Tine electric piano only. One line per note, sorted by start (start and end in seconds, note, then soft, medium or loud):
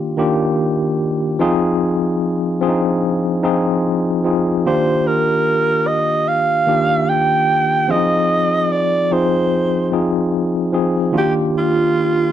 0.00 0.17 D#3 loud
0.00 0.18 A#3 loud
0.00 0.18 D4 medium
0.00 0.19 F4 loud
0.00 0.19 G4 loud
0.17 1.20 D#3 medium
0.17 1.21 A#3 medium
0.17 1.21 D4 medium
0.17 1.21 F4 medium
0.17 1.22 G4 loud
1.39 2.42 F3 loud
1.39 2.43 C4 loud
1.39 2.43 D#4 loud
1.39 2.43 F4 loud
1.39 2.43 G#4 loud
2.61 3.30 F3 medium
2.61 3.30 C4 medium
2.61 2.68 D4 medium
2.61 3.31 F4 medium
2.61 3.31 G#4 loud
2.68 3.34 D#4 medium
3.43 4.12 F3 loud
3.43 4.12 C4 medium
3.43 4.12 D#4 medium
3.43 4.12 F4 medium
3.43 4.12 G#4 medium
4.24 4.58 F3 medium
4.24 4.59 C4 medium
4.24 4.59 D#4 medium
4.24 4.59 F4 medium
4.24 4.60 G#4 medium
4.66 6.02 D#3 medium
4.66 6.02 A#3 medium
4.66 6.03 D4 medium
4.66 6.03 F4 medium
4.66 6.03 G4 loud
6.66 7.70 D#3 medium
6.66 7.70 A#3 medium
6.66 7.70 D4 medium
6.66 7.71 F4 medium
6.66 7.71 G4 medium
7.88 8.92 F3 medium
7.88 8.92 C4 medium
7.88 7.96 D4 medium
7.88 8.92 F4 medium
7.88 8.93 G#4 medium
7.95 8.95 D#4 medium
9.11 9.80 F3 medium
9.11 9.80 C4 medium
9.11 9.80 D#4 medium
9.11 9.80 F4 medium
9.11 9.80 G#4 medium
9.92 10.61 F3 medium
9.92 10.61 C4 medium
9.92 10.61 D#4 medium
9.92 10.61 F4 medium
9.92 10.62 G#4 medium
10.73 11.07 F3 medium
10.73 11.08 C4 medium
10.73 11.08 D#4 medium
10.73 11.08 F4 medium
10.73 11.08 G#4 medium
11.12 12.32 D#3 medium
11.12 12.32 A#3 medium
11.12 12.32 D4 medium
11.12 12.32 F4 medium
11.12 11.21 F#4 medium
11.21 12.32 G4 loud